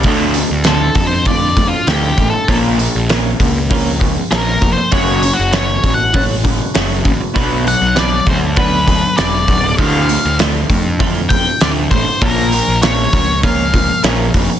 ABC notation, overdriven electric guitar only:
X:1
M:4/4
L:1/8
Q:1/4=99
K:Dm
V:1 name="Overdriven electric guitar" clef=bass
[D,,A,,D,] [D,,A,,] [D,,A,,] [D,,A,,] [D,,A,,] [D,,A,,] [D,,A,,] [D,,A,,] | [B,,F,B,] [B,,F,] [B,,F,] [B,,F,] [B,,F,] [B,,F,] [B,,F,] [B,,F,] | [^F,,^C,^F,] [F,,C,] [F,,C,] [F,,C,] [F,,C,] [F,,C,] [F,,C,] [F,,C,] | [=B,,^F,=B,] [B,,F,] [B,,F,] [B,,F,] [B,,F,] [B,,F,] [B,,F,] [B,,F,] |
[D,,A,,D,] [D,,A,,] [D,,A,,] [D,,A,,] [D,,A,,] [D,,A,,] [D,,A,,] [D,,A,,] | [B,,F,B,] [B,,F,] [B,,F,] [B,,F,] [B,,F,] [B,,F,] [B,,F,] [B,,F,] |]